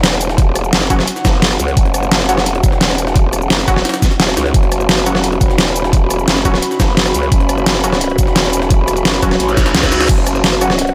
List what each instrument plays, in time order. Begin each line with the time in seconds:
Already playing: wobble bass E1, analog synth pad C#4 F#4 F#5
0.03 snare, closed hi-hat
0.12 snare
0.21 closed hi-hat, shaker
0.29 snare
0.38 kick, closed hi-hat
0.55 cross-stick, closed hi-hat, shaker
0.64 shaker
0.73 wobble bass F#1, snare, closed hi-hat
0.82 closed hi-hat
0.90 synth stab F#3 C#4 F#4, kick, closed hi-hat, shaker
0.99 cross-stick, snare
1.08 closed hi-hat
1.16 snare, shaker
1.25 wobble bass F#1, kick, snare, closed hi-hat, shaker
1.42 snare, closed hi-hat
1.51 cross-stick, snare, shaker
1.60 wobble bass C#2, closed hi-hat, shaker
1.68 closed hi-hat
1.77 wobble bass F#1, kick, closed hi-hat
1.86 closed hi-hat
1.94 cross-stick, closed hi-hat, shaker
2.03 shaker
2.12 snare, closed hi-hat
2.20 closed hi-hat
2.29 synth stab F#3 C#4 F#4, cross-stick, closed hi-hat, shaker
2.37 wobble bass F1, cross-stick, snare
2.46 closed hi-hat
2.55 closed hi-hat
2.64 wobble bass E1, kick, closed hi-hat, shaker
2.72 snare
2.81 snare, closed hi-hat
2.90 snare
2.98 closed hi-hat, shaker
3.07 snare
3.16 kick, closed hi-hat
3.33 cross-stick, closed hi-hat, shaker
3.42 shaker
3.50 wobble bass F#1, snare, closed hi-hat
3.59 closed hi-hat
3.68 synth stab F#3 C#4 F#4, kick, cross-stick, closed hi-hat, shaker
3.76 cross-stick, snare
3.85 snare, closed hi-hat
3.89 snare, closed hi-hat
3.94 snare, closed hi-hat, shaker
4.02 kick, snare, closed hi-hat, shaker
4.11 snare
4.20 wobble bass E1, snare, closed hi-hat
4.28 cross-stick, shaker
4.37 wobble bass C#2, snare, closed hi-hat, shaker
4.46 snare
4.54 wobble bass F#1, analog synth pad B5, kick, closed hi-hat
4.63 closed hi-hat
4.72 cross-stick, closed hi-hat, shaker
4.80 shaker
4.89 snare, closed hi-hat
4.98 closed hi-hat
5.06 synth stab F#3 C#4 F#4, cross-stick, closed hi-hat, shaker
5.14 wobble bass F1, cross-stick, snare
5.24 closed hi-hat
5.32 closed hi-hat
5.41 wobble bass E1, kick, closed hi-hat, shaker
5.50 snare
5.58 snare, closed hi-hat
5.67 snare
5.76 closed hi-hat, shaker
5.84 snare
5.93 kick, closed hi-hat
6.10 cross-stick, closed hi-hat, shaker
6.19 shaker
6.28 wobble bass F#1, snare, closed hi-hat
6.36 closed hi-hat
6.45 synth stab F#3 C#4 F#4, kick, closed hi-hat, shaker
6.54 cross-stick, snare
6.62 closed hi-hat
6.71 snare, shaker
6.80 wobble bass F#1, kick, snare, closed hi-hat, shaker
6.97 snare, closed hi-hat
7.06 cross-stick, snare, shaker
7.14 wobble bass C#2, closed hi-hat, shaker
7.23 closed hi-hat
7.32 wobble bass F#1, kick, closed hi-hat
7.40 closed hi-hat
7.49 cross-stick, closed hi-hat, shaker
7.58 shaker
7.66 snare, closed hi-hat
7.75 closed hi-hat
7.84 synth stab F#3 C#4 F#4, cross-stick, closed hi-hat, shaker
7.92 cross-stick, snare
8.01 closed hi-hat
8.10 closed hi-hat
8.18 wobble bass E1, kick, closed hi-hat, shaker
8.27 snare
8.36 snare, closed hi-hat
8.44 snare
8.53 closed hi-hat, shaker
8.62 snare
8.70 kick, closed hi-hat
8.88 cross-stick, closed hi-hat, shaker
8.97 closed hi-hat, shaker
9.05 wobble bass F#1, snare, closed hi-hat
9.14 closed hi-hat
9.22 synth stab F#3 C#4 F#4, kick, cross-stick, closed hi-hat, shaker
9.31 cross-stick, snare, closed hi-hat
9.40 wobble bass A1, closed hi-hat, reverse cymbal
9.49 snare, shaker
9.57 kick, snare, closed hi-hat, shaker
9.66 snare, closed hi-hat
9.75 wobble bass C#2, snare, closed hi-hat
9.83 kick, cross-stick, snare, closed hi-hat, shaker
9.92 snare, closed hi-hat, shaker
10.01 snare, closed hi-hat
10.09 wobble bass F#1, analog synth pad F#5, kick, closed hi-hat, crash
10.18 closed hi-hat
10.27 cross-stick, closed hi-hat, shaker
10.35 shaker
10.44 snare, closed hi-hat
10.53 closed hi-hat
10.61 synth stab F#3 C#4 F#4, cross-stick, closed hi-hat, shaker
10.70 cross-stick, snare
10.79 closed hi-hat
10.87 closed hi-hat